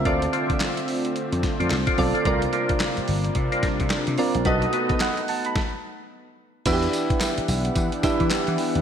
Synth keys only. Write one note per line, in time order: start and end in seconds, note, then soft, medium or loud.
0.05 0.77 C4 medium
0.05 0.77 F4 medium
0.05 0.77 A4 medium
0.05 0.78 D5 medium
1.98 2.17 C4 medium
1.98 2.18 F4 medium
1.98 2.18 A4 medium
1.98 2.18 D5 loud
2.26 2.97 C4 medium
2.26 2.98 F4 medium
2.26 2.98 A#4 medium
2.26 2.98 D5 loud
4.18 4.38 C4 medium
4.18 4.38 F4 medium
4.18 4.38 A#4 medium
4.18 4.38 D5 loud
4.46 5.17 B3 medium
4.46 5.18 F#4 medium
4.46 5.18 A4 medium
4.46 4.74 D#5 loud
4.91 5.01 B4 medium
4.91 5.01 D#5 medium
5.02 5.28 D#5 medium
5.02 5.27 F#5 medium
5.29 5.45 F#5 medium
5.29 5.45 A5 medium
5.46 5.72 B5 medium
6.66 7.38 D4 medium
6.66 7.38 E4 medium
6.66 6.74 F#4 medium
6.66 7.38 B4 medium
6.66 7.38 E5 medium
6.73 7.41 G4 medium
8.03 8.56 D4 loud
8.03 8.56 E4 medium
8.03 8.56 G4 medium
8.03 8.56 B4 medium
8.03 8.56 E5 loud